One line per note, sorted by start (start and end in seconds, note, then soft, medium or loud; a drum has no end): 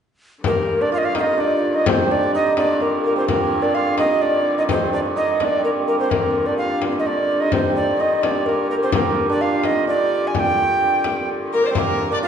0.44 6.10 G2 medium
0.44 6.09 D3 medium
0.44 2.80 A#3 medium
0.44 0.83 A#4 medium
0.44 frame drum medium
0.81 1.21 D4 medium
0.81 0.92 D5 medium
0.92 1.02 F4 medium
0.92 1.00 F5 medium
0.98 1.06 D#5 medium
1.03 3.74 F4 medium
1.03 1.16 F5 loud
1.15 1.44 D#4 medium
1.15 1.22 F5 medium
1.15 frame drum medium
1.21 1.42 D#5 medium
1.38 1.80 D4 medium
1.38 1.77 D5 medium
1.38 frame drum soft
1.74 2.17 D#4 medium
1.74 1.89 D#5 medium
1.86 3.16 C4 medium
1.86 2.13 C5 medium
1.86 frame drum medium
2.10 2.41 D4 medium
2.10 2.34 D5 medium
2.10 frame drum soft
2.35 2.63 D#4 medium
2.35 2.56 D#5 medium
2.57 3.64 D4 medium
2.57 2.84 D5 medium
2.57 frame drum medium
2.80 3.03 A#3 medium
2.80 3.04 A#4 medium
2.80 frame drum soft
3.04 3.28 A#3 medium
3.04 3.16 A#4 medium
3.16 4.69 C4 medium
3.16 3.28 C5 medium
3.28 5.64 A#3 medium
3.28 3.64 A#4 medium
3.28 frame drum medium
3.52 frame drum soft
3.63 4.04 D4 medium
3.63 3.76 D5 medium
3.75 6.60 F4 medium
3.75 3.98 F5 medium
3.98 4.29 D#4 medium
3.98 4.23 D#5 medium
3.98 frame drum medium
4.22 4.64 D4 medium
4.22 4.57 D5 medium
4.22 frame drum soft
4.58 4.99 D#4 medium
4.58 4.63 D#5 medium
4.69 5.58 C4 medium
4.69 4.92 C5 medium
4.69 frame drum medium
4.93 5.22 D4 medium
4.93 5.00 D5 medium
5.16 5.46 D#4 medium
5.16 5.41 D#5 medium
5.16 frame drum soft
5.40 6.48 D4 medium
5.40 5.46 D#5 medium
5.40 frame drum medium
5.45 5.64 D5 medium
5.58 6.01 C4 soft
5.64 5.88 A#3 medium
5.64 5.70 A#4 medium
5.88 6.11 A#3 medium
5.88 5.99 A#4 medium
5.99 7.53 C4 medium
5.99 6.12 C5 medium
6.09 11.75 G2 medium
6.09 11.76 D3 medium
6.09 8.48 A#3 medium
6.09 6.48 A#4 medium
6.09 frame drum medium
6.35 frame drum soft
6.46 7.06 D4 medium
6.46 6.57 D5 medium
6.58 9.42 F4 medium
6.58 6.80 F5 medium
6.82 frame drum medium
6.99 7.08 D#5 medium
7.05 7.48 D4 medium
7.05 7.42 D5 medium
7.05 frame drum soft
7.40 8.00 D#4 medium
7.40 7.55 D#5 medium
7.52 8.83 C4 medium
7.52 7.75 C5 medium
7.52 frame drum medium
7.76 8.01 D5 medium
7.76 frame drum soft
8.00 8.30 D#4 medium
8.00 8.23 D#5 medium
8.22 9.29 D4 medium
8.22 8.48 D5 medium
8.22 frame drum medium
8.46 8.72 A#3 medium
8.46 8.70 A#4 medium
8.46 frame drum soft
8.71 8.94 A#3 medium
8.71 8.76 A#4 medium
8.83 11.70 C4 medium
8.83 8.93 C5 medium
8.92 11.53 A#3 medium
8.92 9.27 A#4 medium
8.92 frame drum medium
9.17 frame drum soft
9.29 9.71 D4 medium
9.29 9.43 D5 medium
9.41 12.23 F4 medium
9.41 9.67 F5 medium
9.63 9.93 D#4 medium
9.63 9.88 D#5 medium
9.63 frame drum medium
9.87 12.11 D4 medium
9.87 10.29 D5 medium
9.87 frame drum soft
10.27 10.35 G#5 medium
10.35 12.28 G4 medium
10.35 10.41 G#5 medium
10.35 frame drum medium
10.40 11.29 G5 medium
10.58 frame drum soft
10.81 frame drum soft
11.04 frame drum medium
11.53 11.77 A#3 medium
11.53 11.65 A#4 medium
11.53 11.67 A#4 medium
11.64 11.68 C5 medium
11.64 11.71 C5 medium
11.64 11.72 D5 medium
11.70 12.28 C4 medium
11.70 11.76 C5 medium
11.70 11.80 C5 medium
11.75 12.28 G2 medium
11.75 12.28 D3 medium
11.75 12.28 A#3 medium
11.75 12.09 A#4 medium
11.75 12.12 A#4 medium
11.75 frame drum medium
11.99 frame drum soft
12.12 12.28 D4 medium
12.12 12.17 D5 medium
12.12 12.18 D5 medium
12.23 12.28 F4 medium
12.23 12.28 F5 medium